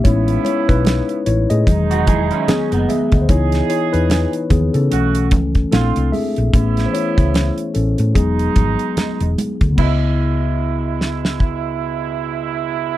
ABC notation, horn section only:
X:1
M:4/4
L:1/8
Q:"Swing 16ths" 1/4=74
K:C#m
V:1 name="Horn section"
[C,B,E]3 z [B,,G,D]3 z | [E,DG]3 z [C,A,F] z [=D,^B,^E] z | [C,B,E]3 z [B,,G,D]3 z | [B,,G,E]8 |]